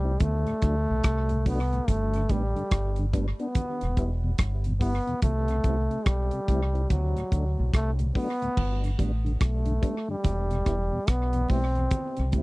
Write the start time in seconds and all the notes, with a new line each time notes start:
Already playing: C2 G3
0.04 C4 E4
0.20 D2 A3, kick, closed hi-hat, low conga
0.46 D2 A2, closed hi-hat
0.62 D2 F#3 A3 D4, kick, cross-stick, closed hi-hat
0.89 B1 D2 A2
1.03 C2, kick, cross-stick, closed hi-hat
1.29 D2 A2, closed hi-hat
1.46 F#3 A3 B3 D4, kick, open hi-hat
1.73 D2 A2, closed hi-hat
1.88 G1 A3, kick, closed hi-hat, low conga
2.14 G2 D3, closed hi-hat
2.29 A1 G3 B3 D4, kick, closed hi-hat, high conga, low conga
2.56 G2 D3, closed hi-hat
2.71 G1, kick, cross-stick, closed hi-hat
2.96 G2 D3, closed hi-hat
3.13 G3 B3 D4, kick, closed hi-hat, high conga
3.40 B3 D4, closed hi-hat
3.55 kick, closed hi-hat, low conga
3.81 E1 E2 B2, closed hi-hat
3.97 E1 G3 B3 E4, kick, closed hi-hat
4.24 E2 B2
4.38 G1, kick, cross-stick, closed hi-hat
4.64 E2 B2, closed hi-hat
4.81 G3 B3 E4, kick, open hi-hat
5.07 E2 B2, closed hi-hat
5.22 C2 A3, kick, closed hi-hat, low conga
5.48 C3, closed hi-hat
5.64 C2 G3 C4 E4, kick, closed hi-hat, high conga, low conga
5.90 C3, closed hi-hat
6.06 B1 G3, kick, cross-stick, closed hi-hat
6.31 C3, closed hi-hat
6.48 C2 G3 C4 E4, kick, closed hi-hat, high conga
6.74 C4 E4, closed hi-hat
6.90 D2 F#3, kick, closed hi-hat, low conga
7.16 D2 A2, closed hi-hat
7.32 D2 F#3 A3 D4, kick, closed hi-hat
7.58 B1 D2 A2
7.74 C2 A3, kick, cross-stick, closed hi-hat
7.99 D2 A2, closed hi-hat
8.15 F#3 A3 B3 D4, kick, open hi-hat
8.42 D2 A2, closed hi-hat
8.57 G1, kick, crash, low conga
8.83 G2 D3, closed hi-hat
8.98 A1 G3 B3 D4, kick, closed hi-hat, high conga, low conga
9.25 G2 D3, closed hi-hat
9.41 B1 A3, kick, cross-stick, closed hi-hat
9.66 G2 D3, closed hi-hat
9.81 G3 B3 D4, kick, closed hi-hat, high conga
10.08 G2 D3 G3
10.24 E1, kick, closed hi-hat, low conga
10.50 E2 B2, closed hi-hat
10.65 E1 G3 B3 E4, kick, cross-stick, closed hi-hat
10.92 E2 B2
11.07 B1 B3, kick, cross-stick, closed hi-hat
11.33 E2 B2, closed hi-hat
11.48 B1 G3 B3 C4 E4, kick, open hi-hat, high conga
11.75 E2 B2, closed hi-hat
11.91 kick, closed hi-hat, low conga
12.17 C2 C3, closed hi-hat
12.32 D2 G3 C4 E4, kick, closed hi-hat, high conga, low conga